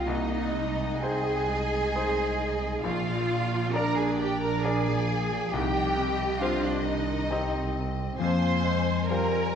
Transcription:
Already playing: double bass section C2, harp D#4 G4 C5
0.05 grand piano C2, harp C3, clarinet A#3, viola section D#4, cello section D#4, violin section D#5
0.29 harp C4
0.52 clarinet G#3, harp D#4
0.77 harp G#4
1.01 clarinet C4, grand piano D#4 G#4 C5, viola section G#4, cello section G#4, harp C5, violin section G#5
1.26 harp D#5
1.48 clarinet G#3, harp G#5
1.72 harp C5
1.95 grand piano D#4 G#4 C5, harp G#4
2.17 harp C4
2.40 harp D#4
2.63 harp C4
2.84 double bass section A#1, grand piano A#1, harp A#2, clarinet A#3, cello section F4, viola section F4, violin section D5 F5
3.08 harp F3
3.30 harp D4
3.53 harp A#4
3.73 clarinet D4, grand piano D4 A#4 D5, cello section A#4, viola section A#4, harp D5, violin section A#5
3.97 cello section G#4, viola section G#4, harp A#4, violin section G#5
4.19 cello section G4, viola section G4, violin section G5, harp A#5
4.41 viola section A#4, cello section A#4, harp D5, violin section A#5
4.64 grand piano D4 A#4 D5, viola section G#4, cello section G#4, violin section G#5
4.88 harp F3
5.10 harp D4
5.31 harp F3
5.52 double bass section C2, grand piano C2, harp C3, clarinet D#4, viola section G4, cello section G4, violin section D#5 G5
5.97 harp C4, clarinet C4
6.40 grand piano C4 G4 C5, clarinet D4, cello section F4, viola section F4, violin section F5
6.63 viola section D4, cello section D4, harp C5, violin section D5
6.85 viola section D#3, cello section D#4, violin section D#5
7.08 harp D#5
7.30 clarinet C4, grand piano C4 G4 D#5
7.75 harp C4
8.18 double bass section F2, grand piano F2, harp F3, clarinet A#3, cello section C5, viola section C5, violin section G#5 C6
8.42 harp F4
8.63 clarinet G#3
9.08 clarinet G3, grand piano G3 F4 C5, cello section A#4, viola section A#4, harp C5, violin section A#5

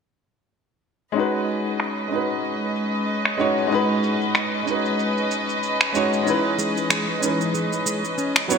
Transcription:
1.12 grand piano G#3 C#4 D#4, string section G#3 C#4 B4 D#5
1.16 grand piano F#4 B4, shaker
1.48 shaker
1.66 shaker
1.80 finger snap, shaker
2.08 grand piano G#3 C#4 D#4
2.12 grand piano F#4 B4, shaker
2.30 shaker
2.44 shaker
2.62 shaker
2.76 shaker
2.94 shaker
3.08 shaker
3.25 finger snap
3.37 grand piano G#3 C#4 D#4 F#4 C#5, shaker
3.58 shaker
3.67 grand piano G#3 C#4 D#4
3.72 grand piano F#4 B4, shaker
4.03 shaker
4.22 shaker
4.35 finger snap, shaker
4.63 grand piano G#3 C#4 D#4
4.67 grand piano F#4 B4, shaker
4.85 shaker
4.99 shaker
5.17 shaker
5.31 shaker
5.49 shaker
5.63 shaker
5.81 finger snap
5.93 grand piano G#3 C#4 D#4 F#4 C#5, shaker
6.13 shaker
6.23 string section E3, grand piano G#3 C#4 D#4, clean electric guitar C#4
6.27 grand piano E4 B4, shaker
6.58 clean electric guitar G#3, shaker
6.77 shaker
6.90 clean electric guitar G#3, finger snap, shaker
7.18 grand piano G#3 C#4 D#4, clean electric guitar C#4
7.23 grand piano E4 B4, shaker
7.41 shaker
7.54 clean electric guitar G#3, shaker
7.73 shaker
7.86 clean electric guitar G#3, shaker
8.05 shaker
8.18 clean electric guitar C#4, shaker
8.36 finger snap
8.48 grand piano F#3 B3 C#4 E4 C#5, string section F#3 E4 B4, clean electric guitar B3, shaker

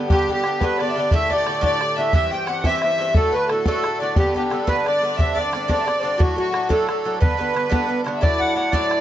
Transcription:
Already playing: bouzouki B3 G4
0.06 bouzouki G2, fiddle G4, bodhran
0.11 bouzouki D3 B3 G4, accordion G4
0.26 bouzouki G2 D3, fiddle G4, bodhran
0.31 bouzouki B3 G4, accordion G4
0.44 bouzouki G2 D3 B3, bodhran
0.48 bouzouki G4
0.60 bouzouki G2 D3 B3, fiddle B4, bodhran
0.64 bouzouki G4, accordion B4
0.78 bouzouki G2 D3, fiddle D5, accordion D5, bodhran
0.82 bouzouki B3 G4
0.89 fiddle E5
0.96 bouzouki G2 D3 B3 G4, fiddle D5
1.11 bouzouki A2 D3 A3 G4, fiddle E5, accordion E5, bodhran
1.30 bouzouki A2 D3 A3 G4, fiddle D5, accordion D5, bodhran
1.46 bouzouki A2 D3 A3 G4, bodhran
1.61 bouzouki A2 D3 A3 G4, fiddle D5, bodhran
1.66 accordion D5
1.79 bouzouki A2 D3 A3 G4, bodhran
1.96 bouzouki A2 D3 A3, fiddle E5, accordion E5
2.00 bouzouki G4
2.11 bouzouki G2 E3 C4, fiddle E5, bodhran
2.15 bouzouki G4, accordion E5
2.30 bouzouki G2 E3 C4 G4, fiddle G5, accordion G5, bodhran
2.45 bouzouki G2 E3 C4, fiddle F#5, bodhran
2.50 bouzouki G4, accordion F#5
2.63 bouzouki G2 E3 C4 G4, fiddle E5, accordion E5, bodhran
2.80 bouzouki G2 E3, fiddle E5, accordion E5, bodhran
2.84 bouzouki C4 G4
2.98 bouzouki G2 E3 C4 G4
3.14 bouzouki A2 D3 A3 F#4, fiddle A4, accordion A4, bodhran
3.31 bouzouki A2 D3, fiddle B4, accordion B4, bodhran
3.35 bouzouki A3 F#4
3.47 bouzouki A2 D3, fiddle A4, bodhran
3.51 bouzouki A3 F#4, accordion A4
3.65 bouzouki A2 D3 A3 F#4, fiddle A4, accordion A4, bodhran
3.84 bouzouki A2 D3 A3 F#4, bodhran
3.99 bouzouki A2 D3 A3, fiddle D5, accordion D5
4.03 bouzouki F#4
4.15 bouzouki G2 D3 B3 D4, fiddle G4, accordion G4, bodhran
4.34 bouzouki G2 D3 B3 D4, fiddle G4, accordion G4, bodhran
4.50 bouzouki G2 D3 B3 D4, accordion A4, bodhran
4.67 bouzouki G2 D3 B3 D4, fiddle B4, accordion B4, bodhran
4.85 bouzouki G2 D3 B3 D4, fiddle D5, accordion D5, bodhran
5.01 bouzouki G2 D3 B3 D4
5.17 bouzouki G2 D3 C4 D4, fiddle E5, accordion E5, bodhran
5.34 bouzouki G2 D3 C4, fiddle D5, accordion D5, bodhran
5.39 bouzouki D4
5.52 bouzouki G2 D3 C4 D4, bodhran
5.67 bouzouki G2 D3 C4, fiddle D5, bodhran
5.71 bouzouki D4, accordion D5
5.79 fiddle E5
5.85 bouzouki G2 D3 C4, fiddle D5, bodhran
5.89 bouzouki D4
5.99 bouzouki G2, fiddle C5
6.03 bouzouki D3 C4 D4, fiddle D5
6.18 bouzouki A2 F#3 A3 D4, accordion F#4, fiddle F#4, bodhran
6.36 bouzouki A2 F#3 A3 D4, fiddle F#4, accordion F#4, bodhran
6.52 bouzouki A2 F#3 A3 D4, bodhran
6.69 bouzouki A2 F#3 A3 D4, fiddle A4, accordion A4, bodhran
6.88 bouzouki A2 F#3 A3 D4, fiddle A4, accordion A4, bodhran
7.04 bouzouki A2 F#3 A3 D4, fiddle A4
7.19 bouzouki G2 D3 B3, fiddle B4, accordion B4, bodhran
7.23 bouzouki D4
7.37 bouzouki G2 D3 B3 D4, bodhran
7.54 bouzouki G2 D3 B3 D4, bodhran
7.70 bouzouki G2 D3 B3 D4, bodhran
7.87 bouzouki G2 D3 B3 D4
8.04 bouzouki G2 D3 B3 D4, bodhran
8.16 fiddle E5
8.21 bouzouki A2 F#3 D4 E4, accordion D5, fiddle D5, bodhran
8.40 accordion F#5, bodhran
8.55 bouzouki A2 F#3 D4 E4, accordion F#5
8.71 bouzouki A2 F#3 D4 E4, accordion D5, fiddle D5, bodhran
8.91 bodhran

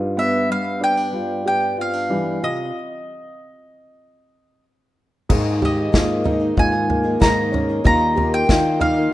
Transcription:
Already playing: steel-string acoustic guitar G2, picked electric bass G2, upright piano F4
0.17 upright piano B3, steel-string acoustic guitar B3, mandolin E5
0.50 steel-string acoustic guitar G3, mandolin F5
0.81 steel-string acoustic guitar C4, upright piano D4, mandolin G5
0.97 steel-string acoustic guitar D4
1.13 steel-string acoustic guitar G3, upright piano F4
1.46 steel-string acoustic guitar B3, upright piano G4, mandolin G5
1.77 steel-string acoustic guitar C4, upright piano F4
1.81 mandolin F5
1.93 steel-string acoustic guitar D4
2.09 upright piano E3, steel-string acoustic guitar G3
2.42 steel-string acoustic guitar C3, upright piano F4, mandolin D#5
5.29 steel-string acoustic guitar G#2 G#3 A#3 D#4 G#4, picked electric bass G#2, upright piano D#4, kick, floor tom, crash
5.61 steel-string acoustic guitar D#3 G#3 A#3 D#4 G#4, upright piano G4, mandolin D#5, floor tom
5.92 picked electric bass G#2, steel-string acoustic guitar G#3 A#3 D#4 G#4, upright piano F4, kick, snare, floor tom
6.24 steel-string acoustic guitar G#3 A#3 D#4 G#4, upright piano D#4, floor tom
6.39 steel-string acoustic guitar A#3 D#4 G#4
6.57 picked electric bass G#2, steel-string acoustic guitar D#3, upright piano F4, mandolin G#5, kick, floor tom
6.72 steel-string acoustic guitar A#3 D#4 G#4
6.90 steel-string acoustic guitar A#3, floor tom
7.04 steel-string acoustic guitar A#3 D#4 G#4
7.20 picked electric bass G#2, steel-string acoustic guitar D#3 G#3 A#3 D#4 G#4, upright piano D#4, mandolin A#5, kick, snare, floor tom
7.52 steel-string acoustic guitar G#3 A#3 D#4 G#4, upright piano C#4, floor tom
7.69 steel-string acoustic guitar A#3 D#4 G#4
7.84 picked electric bass D#2, steel-string acoustic guitar D#3 G3 A#3 D#4 F4, upright piano D#4, mandolin A#5, kick, floor tom
8.16 steel-string acoustic guitar G3 A#3 D#4 F4, upright piano G4, floor tom
8.34 mandolin G5
8.49 steel-string acoustic guitar D#3 G3 A#3 D#4 F4, picked electric bass D#3, upright piano F4, kick, snare, floor tom
8.80 steel-string acoustic guitar G3 A#3 D#4 F4, upright piano D#4, mandolin F5, floor tom
8.96 steel-string acoustic guitar A#3 D#4 F4

